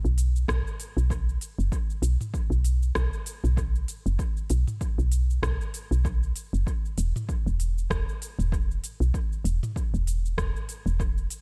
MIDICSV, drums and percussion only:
0, 0, Header, 1, 2, 480
1, 0, Start_track
1, 0, Tempo, 618557
1, 1337, Time_signature, 4, 2, 24, 8
1, 8857, End_track
2, 0, Start_track
2, 0, Title_t, "Drums"
2, 41, Note_on_c, 9, 69, 22
2, 118, Note_off_c, 9, 69, 0
2, 138, Note_on_c, 9, 46, 81
2, 141, Note_on_c, 9, 69, 72
2, 215, Note_off_c, 9, 46, 0
2, 219, Note_off_c, 9, 69, 0
2, 279, Note_on_c, 9, 69, 30
2, 357, Note_off_c, 9, 69, 0
2, 376, Note_on_c, 9, 36, 96
2, 380, Note_on_c, 9, 37, 80
2, 380, Note_on_c, 9, 45, 74
2, 384, Note_on_c, 9, 69, 44
2, 453, Note_off_c, 9, 36, 0
2, 458, Note_off_c, 9, 37, 0
2, 458, Note_off_c, 9, 45, 0
2, 461, Note_off_c, 9, 69, 0
2, 521, Note_on_c, 9, 69, 22
2, 599, Note_off_c, 9, 69, 0
2, 618, Note_on_c, 9, 46, 79
2, 621, Note_on_c, 9, 69, 75
2, 695, Note_off_c, 9, 46, 0
2, 699, Note_off_c, 9, 69, 0
2, 759, Note_on_c, 9, 69, 32
2, 837, Note_off_c, 9, 69, 0
2, 856, Note_on_c, 9, 36, 99
2, 863, Note_on_c, 9, 69, 43
2, 933, Note_off_c, 9, 36, 0
2, 940, Note_off_c, 9, 69, 0
2, 1000, Note_on_c, 9, 69, 22
2, 1078, Note_off_c, 9, 69, 0
2, 1096, Note_on_c, 9, 46, 78
2, 1100, Note_on_c, 9, 69, 74
2, 1174, Note_off_c, 9, 46, 0
2, 1178, Note_off_c, 9, 69, 0
2, 1240, Note_on_c, 9, 69, 30
2, 1317, Note_off_c, 9, 69, 0
2, 1335, Note_on_c, 9, 36, 98
2, 1339, Note_on_c, 9, 69, 44
2, 1412, Note_off_c, 9, 36, 0
2, 1416, Note_off_c, 9, 69, 0
2, 1475, Note_on_c, 9, 69, 22
2, 1552, Note_off_c, 9, 69, 0
2, 1573, Note_on_c, 9, 46, 79
2, 1576, Note_on_c, 9, 69, 80
2, 1650, Note_off_c, 9, 46, 0
2, 1654, Note_off_c, 9, 69, 0
2, 1712, Note_on_c, 9, 45, 76
2, 1716, Note_on_c, 9, 69, 36
2, 1790, Note_off_c, 9, 45, 0
2, 1793, Note_off_c, 9, 69, 0
2, 1814, Note_on_c, 9, 36, 97
2, 1819, Note_on_c, 9, 69, 43
2, 1891, Note_off_c, 9, 36, 0
2, 1897, Note_off_c, 9, 69, 0
2, 1955, Note_on_c, 9, 69, 23
2, 2032, Note_off_c, 9, 69, 0
2, 2053, Note_on_c, 9, 46, 77
2, 2056, Note_on_c, 9, 69, 78
2, 2130, Note_off_c, 9, 46, 0
2, 2134, Note_off_c, 9, 69, 0
2, 2193, Note_on_c, 9, 69, 34
2, 2270, Note_off_c, 9, 69, 0
2, 2291, Note_on_c, 9, 37, 80
2, 2292, Note_on_c, 9, 36, 97
2, 2295, Note_on_c, 9, 69, 46
2, 2369, Note_off_c, 9, 37, 0
2, 2370, Note_off_c, 9, 36, 0
2, 2372, Note_off_c, 9, 69, 0
2, 2430, Note_on_c, 9, 69, 22
2, 2508, Note_off_c, 9, 69, 0
2, 2531, Note_on_c, 9, 46, 85
2, 2535, Note_on_c, 9, 69, 82
2, 2609, Note_off_c, 9, 46, 0
2, 2612, Note_off_c, 9, 69, 0
2, 2672, Note_on_c, 9, 45, 53
2, 2675, Note_on_c, 9, 69, 33
2, 2749, Note_off_c, 9, 45, 0
2, 2753, Note_off_c, 9, 69, 0
2, 2772, Note_on_c, 9, 36, 111
2, 2776, Note_on_c, 9, 69, 43
2, 2850, Note_off_c, 9, 36, 0
2, 2854, Note_off_c, 9, 69, 0
2, 2913, Note_on_c, 9, 69, 22
2, 2991, Note_off_c, 9, 69, 0
2, 3013, Note_on_c, 9, 46, 82
2, 3016, Note_on_c, 9, 69, 75
2, 3090, Note_off_c, 9, 46, 0
2, 3094, Note_off_c, 9, 69, 0
2, 3152, Note_on_c, 9, 69, 30
2, 3229, Note_off_c, 9, 69, 0
2, 3252, Note_on_c, 9, 36, 102
2, 3254, Note_on_c, 9, 69, 43
2, 3330, Note_off_c, 9, 36, 0
2, 3331, Note_off_c, 9, 69, 0
2, 3390, Note_on_c, 9, 69, 21
2, 3468, Note_off_c, 9, 69, 0
2, 3489, Note_on_c, 9, 46, 80
2, 3493, Note_on_c, 9, 69, 74
2, 3567, Note_off_c, 9, 46, 0
2, 3570, Note_off_c, 9, 69, 0
2, 3627, Note_on_c, 9, 45, 79
2, 3631, Note_on_c, 9, 69, 35
2, 3705, Note_off_c, 9, 45, 0
2, 3708, Note_off_c, 9, 69, 0
2, 3732, Note_on_c, 9, 36, 92
2, 3734, Note_on_c, 9, 69, 47
2, 3810, Note_off_c, 9, 36, 0
2, 3812, Note_off_c, 9, 69, 0
2, 3873, Note_on_c, 9, 69, 23
2, 3951, Note_off_c, 9, 69, 0
2, 3970, Note_on_c, 9, 46, 75
2, 3974, Note_on_c, 9, 69, 72
2, 4048, Note_off_c, 9, 46, 0
2, 4052, Note_off_c, 9, 69, 0
2, 4115, Note_on_c, 9, 69, 33
2, 4192, Note_off_c, 9, 69, 0
2, 4213, Note_on_c, 9, 36, 103
2, 4214, Note_on_c, 9, 37, 73
2, 4214, Note_on_c, 9, 45, 73
2, 4218, Note_on_c, 9, 69, 44
2, 4291, Note_off_c, 9, 36, 0
2, 4292, Note_off_c, 9, 37, 0
2, 4292, Note_off_c, 9, 45, 0
2, 4295, Note_off_c, 9, 69, 0
2, 4354, Note_on_c, 9, 69, 22
2, 4432, Note_off_c, 9, 69, 0
2, 4454, Note_on_c, 9, 46, 82
2, 4457, Note_on_c, 9, 69, 77
2, 4531, Note_off_c, 9, 46, 0
2, 4535, Note_off_c, 9, 69, 0
2, 4595, Note_on_c, 9, 69, 32
2, 4673, Note_off_c, 9, 69, 0
2, 4694, Note_on_c, 9, 36, 112
2, 4699, Note_on_c, 9, 69, 42
2, 4771, Note_off_c, 9, 36, 0
2, 4776, Note_off_c, 9, 69, 0
2, 4835, Note_on_c, 9, 69, 23
2, 4913, Note_off_c, 9, 69, 0
2, 4932, Note_on_c, 9, 46, 80
2, 4936, Note_on_c, 9, 69, 71
2, 5010, Note_off_c, 9, 46, 0
2, 5014, Note_off_c, 9, 69, 0
2, 5077, Note_on_c, 9, 69, 30
2, 5155, Note_off_c, 9, 69, 0
2, 5174, Note_on_c, 9, 36, 90
2, 5181, Note_on_c, 9, 69, 40
2, 5252, Note_off_c, 9, 36, 0
2, 5258, Note_off_c, 9, 69, 0
2, 5319, Note_on_c, 9, 69, 21
2, 5396, Note_off_c, 9, 69, 0
2, 5413, Note_on_c, 9, 46, 76
2, 5417, Note_on_c, 9, 69, 72
2, 5491, Note_off_c, 9, 46, 0
2, 5495, Note_off_c, 9, 69, 0
2, 5555, Note_on_c, 9, 45, 85
2, 5558, Note_on_c, 9, 69, 34
2, 5632, Note_off_c, 9, 45, 0
2, 5636, Note_off_c, 9, 69, 0
2, 5655, Note_on_c, 9, 36, 96
2, 5659, Note_on_c, 9, 69, 41
2, 5732, Note_off_c, 9, 36, 0
2, 5736, Note_off_c, 9, 69, 0
2, 5798, Note_on_c, 9, 69, 21
2, 5875, Note_off_c, 9, 69, 0
2, 5895, Note_on_c, 9, 46, 81
2, 5899, Note_on_c, 9, 69, 71
2, 5973, Note_off_c, 9, 46, 0
2, 5977, Note_off_c, 9, 69, 0
2, 6039, Note_on_c, 9, 69, 32
2, 6116, Note_off_c, 9, 69, 0
2, 6134, Note_on_c, 9, 36, 96
2, 6136, Note_on_c, 9, 37, 71
2, 6140, Note_on_c, 9, 69, 42
2, 6212, Note_off_c, 9, 36, 0
2, 6214, Note_off_c, 9, 37, 0
2, 6217, Note_off_c, 9, 69, 0
2, 6277, Note_on_c, 9, 69, 22
2, 6354, Note_off_c, 9, 69, 0
2, 6378, Note_on_c, 9, 46, 81
2, 6381, Note_on_c, 9, 69, 75
2, 6455, Note_off_c, 9, 46, 0
2, 6459, Note_off_c, 9, 69, 0
2, 6514, Note_on_c, 9, 45, 58
2, 6517, Note_on_c, 9, 69, 33
2, 6591, Note_off_c, 9, 45, 0
2, 6595, Note_off_c, 9, 69, 0
2, 6614, Note_on_c, 9, 36, 102
2, 6624, Note_on_c, 9, 69, 42
2, 6691, Note_off_c, 9, 36, 0
2, 6701, Note_off_c, 9, 69, 0
2, 6760, Note_on_c, 9, 69, 21
2, 6837, Note_off_c, 9, 69, 0
2, 6857, Note_on_c, 9, 46, 82
2, 6861, Note_on_c, 9, 69, 73
2, 6935, Note_off_c, 9, 46, 0
2, 6938, Note_off_c, 9, 69, 0
2, 6998, Note_on_c, 9, 69, 31
2, 7075, Note_off_c, 9, 69, 0
2, 7094, Note_on_c, 9, 36, 90
2, 7097, Note_on_c, 9, 69, 39
2, 7171, Note_off_c, 9, 36, 0
2, 7175, Note_off_c, 9, 69, 0
2, 7236, Note_on_c, 9, 69, 19
2, 7313, Note_off_c, 9, 69, 0
2, 7335, Note_on_c, 9, 46, 82
2, 7339, Note_on_c, 9, 69, 68
2, 7413, Note_off_c, 9, 46, 0
2, 7416, Note_off_c, 9, 69, 0
2, 7473, Note_on_c, 9, 45, 85
2, 7477, Note_on_c, 9, 69, 33
2, 7551, Note_off_c, 9, 45, 0
2, 7554, Note_off_c, 9, 69, 0
2, 7574, Note_on_c, 9, 36, 87
2, 7581, Note_on_c, 9, 69, 42
2, 7652, Note_off_c, 9, 36, 0
2, 7659, Note_off_c, 9, 69, 0
2, 7716, Note_on_c, 9, 69, 21
2, 7794, Note_off_c, 9, 69, 0
2, 7817, Note_on_c, 9, 46, 79
2, 7820, Note_on_c, 9, 69, 73
2, 7894, Note_off_c, 9, 46, 0
2, 7898, Note_off_c, 9, 69, 0
2, 7959, Note_on_c, 9, 69, 29
2, 8036, Note_off_c, 9, 69, 0
2, 8054, Note_on_c, 9, 36, 96
2, 8055, Note_on_c, 9, 37, 71
2, 8055, Note_on_c, 9, 45, 79
2, 8059, Note_on_c, 9, 69, 43
2, 8132, Note_off_c, 9, 36, 0
2, 8133, Note_off_c, 9, 37, 0
2, 8133, Note_off_c, 9, 45, 0
2, 8136, Note_off_c, 9, 69, 0
2, 8196, Note_on_c, 9, 69, 21
2, 8273, Note_off_c, 9, 69, 0
2, 8294, Note_on_c, 9, 46, 80
2, 8298, Note_on_c, 9, 69, 72
2, 8371, Note_off_c, 9, 46, 0
2, 8375, Note_off_c, 9, 69, 0
2, 8434, Note_on_c, 9, 69, 30
2, 8511, Note_off_c, 9, 69, 0
2, 8534, Note_on_c, 9, 36, 103
2, 8539, Note_on_c, 9, 69, 41
2, 8612, Note_off_c, 9, 36, 0
2, 8617, Note_off_c, 9, 69, 0
2, 8673, Note_on_c, 9, 69, 21
2, 8751, Note_off_c, 9, 69, 0
2, 8772, Note_on_c, 9, 46, 84
2, 8776, Note_on_c, 9, 69, 68
2, 8850, Note_off_c, 9, 46, 0
2, 8853, Note_off_c, 9, 69, 0
2, 8857, End_track
0, 0, End_of_file